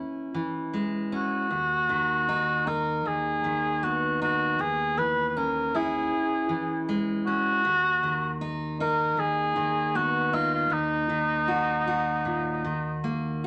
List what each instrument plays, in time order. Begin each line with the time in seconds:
Already playing: steel-string acoustic guitar E3 C#4 E4
0.34 steel-string acoustic guitar E3
0.73 steel-string acoustic guitar G#3
1.12 steel-string acoustic guitar C#4, cor anglais F#4
1.50 steel-string acoustic guitar D#2
1.89 steel-string acoustic guitar D#3
2.29 steel-string acoustic guitar D#4
2.67 steel-string acoustic guitar D#4, cor anglais A#4
3.06 steel-string acoustic guitar D#2, cor anglais G#4
3.44 steel-string acoustic guitar D#3
3.83 steel-string acoustic guitar B3, cor anglais F#4
4.22 steel-string acoustic guitar D#4, cor anglais F#4
4.59 steel-string acoustic guitar D#2, cor anglais G#4
4.97 steel-string acoustic guitar E3, cor anglais B4
5.28 cor anglais B4
5.37 steel-string acoustic guitar C#4, cor anglais A#4
5.75 steel-string acoustic guitar E4, cor anglais G#4
6.49 steel-string acoustic guitar E3
6.89 steel-string acoustic guitar G#3
7.26 steel-string acoustic guitar C#4, cor anglais F#4
7.65 steel-string acoustic guitar D#2
8.03 steel-string acoustic guitar D#3
8.41 steel-string acoustic guitar D#4
8.80 steel-string acoustic guitar D#4, cor anglais A#4
9.17 steel-string acoustic guitar D#2, cor anglais G#4
9.56 steel-string acoustic guitar D#3
9.95 steel-string acoustic guitar B3, cor anglais F#4
10.33 steel-string acoustic guitar D#4, cor anglais F4
10.54 cor anglais F4
10.70 steel-string acoustic guitar D#2, cor anglais D#4
11.09 steel-string acoustic guitar D#3
11.48 steel-string acoustic guitar F#4
11.87 steel-string acoustic guitar F#4
12.25 steel-string acoustic guitar A#2
12.65 steel-string acoustic guitar D#3
13.04 steel-string acoustic guitar A#3